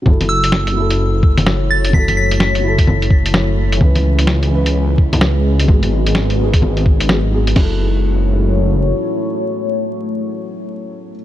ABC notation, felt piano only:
X:1
M:4/4
L:1/8
Q:"Swing 16ths" 1/4=128
K:F#dor
V:1 name="Felt piano"
[F,EA]3 [F,EA]4- [F,EA] | [F,EA]3 [F,EA]4- [F,EA] | [E,CB]3 [E,CB]4- [E,CB] | [F,B,G]3 [F,B,G]3 [F,B,G] [F,B,G] |
[F,EA]8- | [F,EA]8 |]